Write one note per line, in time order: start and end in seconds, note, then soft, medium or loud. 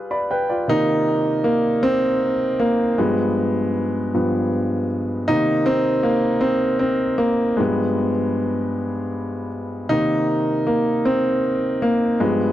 0.00 0.62 G3 medium
0.00 0.50 F4 medium
0.00 0.69 G#4 medium
0.00 0.31 B4 medium
0.11 0.28 D5 soft
0.11 0.28 B5 medium
0.31 0.48 B4 medium
0.31 0.48 G5 medium
0.50 0.85 F4 soft
0.50 0.85 D5 medium
0.68 1.18 C3 soft
0.68 1.19 D#3 soft
0.68 1.19 A#3 medium
0.68 1.47 D#4 loud
1.44 1.80 A#3 medium
1.83 2.62 C4 loud
2.60 2.99 A#3 medium
2.98 4.10 G2 medium
2.98 4.10 F3 soft
2.98 4.86 G#3 medium
2.98 4.10 B3 medium
4.14 4.48 G2 medium
4.14 4.48 F3 soft
4.14 4.49 B3 medium
5.28 7.55 C3 medium
5.28 7.56 D#3 soft
5.28 6.02 A#3 medium
5.28 5.68 D#4 loud
5.66 6.06 C4 loud
6.03 6.44 A#3 medium
6.41 6.78 C4 loud
6.79 7.20 C4 medium
7.18 7.59 A#3 medium
7.57 8.10 G2 medium
7.57 8.11 F3 soft
7.57 9.46 G#3 medium
7.61 8.11 B3 medium
9.89 11.01 C3 medium
9.89 11.01 D#3 soft
9.89 10.65 A#3 medium
9.89 10.69 D#4 loud
10.67 11.06 A#3 medium
11.05 11.84 C4 medium
11.82 12.22 A#3 medium
12.20 12.52 G2 medium
12.20 12.52 F3 medium
12.20 12.52 G#3 medium
12.20 12.52 B3 medium